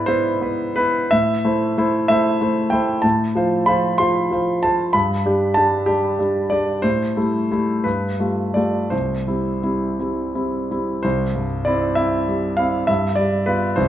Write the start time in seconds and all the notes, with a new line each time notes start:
Already playing: G#2 B3 E4 B4 D5 E5
0.06 B3 E4 B4 C5
0.41 B3 E4 B4
0.76 B3 E4 B4
1.11 A2 E5
1.45 A3 E4 C5
1.78 A3 E4 C5
2.08 A3 E4 C5 E5
2.41 A3 E4 C5
2.70 A3 E4 C5 G5
3.02 A2 A5
3.35 F3 F4 C5
3.66 F3 F4 C5 B5
3.98 F3 F4 C5 C6
4.31 F3 F4 C5
4.63 F3 F4 C5 A5
4.93 G2 B5
5.26 G3 D4 G4
5.54 G3 D4 G4 A5
5.86 G3 D4 G4
6.19 G3 D4 G4
6.50 G3 D4 G4 D5
6.82 A2 C5
7.16 G3 A3 E4
7.51 G3 A3 E4
7.84 G2 B4
8.20 G3 A3 F4
8.54 G3 A3 F4 D5
8.90 C2 C5
9.27 G3 C4 E4
9.62 G3 C4 E4
9.99 G3 C4 E4
10.35 G3 C4 E4
10.70 G3 C4 E4
11.03 C2 C5
11.35 G2
11.65 C4 E4 D5
11.95 C4 E4 E5
12.28 G3
12.57 C4 E4 F5
12.87 G2 E5
13.16 G3 D5
13.46 B3 F4 B4
13.76 C2 C5